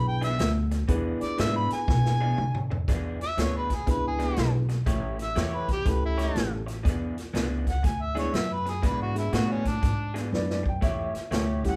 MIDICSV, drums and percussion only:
0, 0, Header, 1, 2, 480
1, 0, Start_track
1, 0, Tempo, 496278
1, 863, Time_signature, 4, 2, 24, 8
1, 11376, End_track
2, 0, Start_track
2, 0, Title_t, "Drums"
2, 215, Note_on_c, 9, 42, 67
2, 227, Note_on_c, 9, 38, 32
2, 312, Note_off_c, 9, 42, 0
2, 324, Note_off_c, 9, 38, 0
2, 378, Note_on_c, 9, 42, 90
2, 389, Note_on_c, 9, 38, 111
2, 474, Note_off_c, 9, 42, 0
2, 486, Note_off_c, 9, 38, 0
2, 690, Note_on_c, 9, 42, 66
2, 701, Note_on_c, 9, 38, 33
2, 786, Note_off_c, 9, 42, 0
2, 798, Note_off_c, 9, 38, 0
2, 855, Note_on_c, 9, 42, 93
2, 857, Note_on_c, 9, 36, 105
2, 952, Note_off_c, 9, 42, 0
2, 954, Note_off_c, 9, 36, 0
2, 1170, Note_on_c, 9, 42, 61
2, 1181, Note_on_c, 9, 38, 36
2, 1266, Note_off_c, 9, 42, 0
2, 1278, Note_off_c, 9, 38, 0
2, 1337, Note_on_c, 9, 42, 86
2, 1349, Note_on_c, 9, 38, 110
2, 1434, Note_off_c, 9, 42, 0
2, 1445, Note_off_c, 9, 38, 0
2, 1648, Note_on_c, 9, 42, 65
2, 1660, Note_on_c, 9, 38, 31
2, 1745, Note_off_c, 9, 42, 0
2, 1757, Note_off_c, 9, 38, 0
2, 1819, Note_on_c, 9, 36, 117
2, 1828, Note_on_c, 9, 38, 59
2, 1915, Note_off_c, 9, 36, 0
2, 1925, Note_off_c, 9, 38, 0
2, 1988, Note_on_c, 9, 38, 60
2, 2085, Note_off_c, 9, 38, 0
2, 2302, Note_on_c, 9, 47, 67
2, 2398, Note_off_c, 9, 47, 0
2, 2462, Note_on_c, 9, 45, 77
2, 2558, Note_off_c, 9, 45, 0
2, 2625, Note_on_c, 9, 43, 85
2, 2722, Note_off_c, 9, 43, 0
2, 2785, Note_on_c, 9, 36, 98
2, 2789, Note_on_c, 9, 42, 77
2, 2800, Note_on_c, 9, 38, 32
2, 2882, Note_off_c, 9, 36, 0
2, 2885, Note_off_c, 9, 42, 0
2, 2897, Note_off_c, 9, 38, 0
2, 3105, Note_on_c, 9, 42, 53
2, 3117, Note_on_c, 9, 38, 32
2, 3202, Note_off_c, 9, 42, 0
2, 3213, Note_off_c, 9, 38, 0
2, 3266, Note_on_c, 9, 42, 79
2, 3277, Note_on_c, 9, 38, 109
2, 3363, Note_off_c, 9, 42, 0
2, 3374, Note_off_c, 9, 38, 0
2, 3579, Note_on_c, 9, 36, 69
2, 3579, Note_on_c, 9, 42, 62
2, 3591, Note_on_c, 9, 38, 30
2, 3676, Note_off_c, 9, 36, 0
2, 3676, Note_off_c, 9, 42, 0
2, 3687, Note_off_c, 9, 38, 0
2, 3743, Note_on_c, 9, 42, 79
2, 3745, Note_on_c, 9, 36, 106
2, 3755, Note_on_c, 9, 38, 30
2, 3840, Note_off_c, 9, 42, 0
2, 3841, Note_off_c, 9, 36, 0
2, 3852, Note_off_c, 9, 38, 0
2, 4057, Note_on_c, 9, 42, 56
2, 4068, Note_on_c, 9, 38, 34
2, 4153, Note_off_c, 9, 42, 0
2, 4165, Note_off_c, 9, 38, 0
2, 4221, Note_on_c, 9, 42, 76
2, 4232, Note_on_c, 9, 38, 107
2, 4317, Note_off_c, 9, 42, 0
2, 4329, Note_off_c, 9, 38, 0
2, 4538, Note_on_c, 9, 42, 57
2, 4550, Note_on_c, 9, 38, 32
2, 4635, Note_off_c, 9, 42, 0
2, 4646, Note_off_c, 9, 38, 0
2, 4705, Note_on_c, 9, 36, 97
2, 4705, Note_on_c, 9, 42, 85
2, 4716, Note_on_c, 9, 38, 37
2, 4801, Note_off_c, 9, 42, 0
2, 4802, Note_off_c, 9, 36, 0
2, 4813, Note_off_c, 9, 38, 0
2, 5021, Note_on_c, 9, 42, 61
2, 5033, Note_on_c, 9, 38, 30
2, 5118, Note_off_c, 9, 42, 0
2, 5129, Note_off_c, 9, 38, 0
2, 5183, Note_on_c, 9, 42, 73
2, 5195, Note_on_c, 9, 38, 95
2, 5280, Note_off_c, 9, 42, 0
2, 5292, Note_off_c, 9, 38, 0
2, 5498, Note_on_c, 9, 36, 75
2, 5499, Note_on_c, 9, 42, 54
2, 5511, Note_on_c, 9, 38, 30
2, 5595, Note_off_c, 9, 36, 0
2, 5596, Note_off_c, 9, 42, 0
2, 5607, Note_off_c, 9, 38, 0
2, 5663, Note_on_c, 9, 42, 78
2, 5665, Note_on_c, 9, 36, 106
2, 5674, Note_on_c, 9, 38, 33
2, 5759, Note_off_c, 9, 42, 0
2, 5762, Note_off_c, 9, 36, 0
2, 5771, Note_off_c, 9, 38, 0
2, 5985, Note_on_c, 9, 42, 60
2, 5996, Note_on_c, 9, 38, 34
2, 6082, Note_off_c, 9, 42, 0
2, 6093, Note_off_c, 9, 38, 0
2, 6148, Note_on_c, 9, 42, 76
2, 6159, Note_on_c, 9, 38, 98
2, 6244, Note_off_c, 9, 42, 0
2, 6256, Note_off_c, 9, 38, 0
2, 6461, Note_on_c, 9, 42, 55
2, 6472, Note_on_c, 9, 38, 29
2, 6558, Note_off_c, 9, 42, 0
2, 6569, Note_off_c, 9, 38, 0
2, 6626, Note_on_c, 9, 36, 103
2, 6630, Note_on_c, 9, 42, 78
2, 6641, Note_on_c, 9, 38, 33
2, 6723, Note_off_c, 9, 36, 0
2, 6726, Note_off_c, 9, 42, 0
2, 6738, Note_off_c, 9, 38, 0
2, 6942, Note_on_c, 9, 42, 59
2, 6953, Note_on_c, 9, 38, 35
2, 7038, Note_off_c, 9, 42, 0
2, 7050, Note_off_c, 9, 38, 0
2, 7104, Note_on_c, 9, 42, 74
2, 7116, Note_on_c, 9, 38, 95
2, 7201, Note_off_c, 9, 42, 0
2, 7212, Note_off_c, 9, 38, 0
2, 7417, Note_on_c, 9, 36, 70
2, 7418, Note_on_c, 9, 42, 53
2, 7430, Note_on_c, 9, 38, 32
2, 7514, Note_off_c, 9, 36, 0
2, 7515, Note_off_c, 9, 42, 0
2, 7526, Note_off_c, 9, 38, 0
2, 7581, Note_on_c, 9, 42, 75
2, 7583, Note_on_c, 9, 36, 94
2, 7593, Note_on_c, 9, 38, 32
2, 7678, Note_off_c, 9, 42, 0
2, 7679, Note_off_c, 9, 36, 0
2, 7690, Note_off_c, 9, 38, 0
2, 7898, Note_on_c, 9, 42, 59
2, 7909, Note_on_c, 9, 38, 32
2, 7995, Note_off_c, 9, 42, 0
2, 8006, Note_off_c, 9, 38, 0
2, 8064, Note_on_c, 9, 42, 71
2, 8076, Note_on_c, 9, 38, 105
2, 8161, Note_off_c, 9, 42, 0
2, 8172, Note_off_c, 9, 38, 0
2, 8379, Note_on_c, 9, 42, 54
2, 8391, Note_on_c, 9, 38, 31
2, 8476, Note_off_c, 9, 42, 0
2, 8487, Note_off_c, 9, 38, 0
2, 8542, Note_on_c, 9, 42, 86
2, 8543, Note_on_c, 9, 36, 102
2, 8554, Note_on_c, 9, 38, 35
2, 8639, Note_off_c, 9, 42, 0
2, 8640, Note_off_c, 9, 36, 0
2, 8650, Note_off_c, 9, 38, 0
2, 8859, Note_on_c, 9, 42, 65
2, 8870, Note_on_c, 9, 38, 34
2, 8955, Note_off_c, 9, 42, 0
2, 8967, Note_off_c, 9, 38, 0
2, 9021, Note_on_c, 9, 42, 78
2, 9033, Note_on_c, 9, 38, 104
2, 9118, Note_off_c, 9, 42, 0
2, 9130, Note_off_c, 9, 38, 0
2, 9336, Note_on_c, 9, 42, 56
2, 9338, Note_on_c, 9, 36, 67
2, 9348, Note_on_c, 9, 38, 33
2, 9433, Note_off_c, 9, 42, 0
2, 9435, Note_off_c, 9, 36, 0
2, 9444, Note_off_c, 9, 38, 0
2, 9503, Note_on_c, 9, 42, 75
2, 9506, Note_on_c, 9, 36, 99
2, 9514, Note_on_c, 9, 38, 33
2, 9599, Note_off_c, 9, 42, 0
2, 9603, Note_off_c, 9, 36, 0
2, 9611, Note_off_c, 9, 38, 0
2, 9823, Note_on_c, 9, 42, 57
2, 9834, Note_on_c, 9, 38, 35
2, 9919, Note_off_c, 9, 42, 0
2, 9931, Note_off_c, 9, 38, 0
2, 10000, Note_on_c, 9, 38, 60
2, 10096, Note_off_c, 9, 38, 0
2, 10158, Note_on_c, 9, 38, 54
2, 10255, Note_off_c, 9, 38, 0
2, 10307, Note_on_c, 9, 36, 81
2, 10403, Note_off_c, 9, 36, 0
2, 10466, Note_on_c, 9, 42, 71
2, 10468, Note_on_c, 9, 36, 94
2, 10478, Note_on_c, 9, 38, 31
2, 10563, Note_off_c, 9, 42, 0
2, 10564, Note_off_c, 9, 36, 0
2, 10575, Note_off_c, 9, 38, 0
2, 10781, Note_on_c, 9, 42, 56
2, 10793, Note_on_c, 9, 38, 33
2, 10878, Note_off_c, 9, 42, 0
2, 10890, Note_off_c, 9, 38, 0
2, 10947, Note_on_c, 9, 42, 76
2, 10959, Note_on_c, 9, 38, 109
2, 11044, Note_off_c, 9, 42, 0
2, 11056, Note_off_c, 9, 38, 0
2, 11263, Note_on_c, 9, 36, 66
2, 11264, Note_on_c, 9, 42, 58
2, 11276, Note_on_c, 9, 38, 30
2, 11360, Note_off_c, 9, 36, 0
2, 11361, Note_off_c, 9, 42, 0
2, 11372, Note_off_c, 9, 38, 0
2, 11376, End_track
0, 0, End_of_file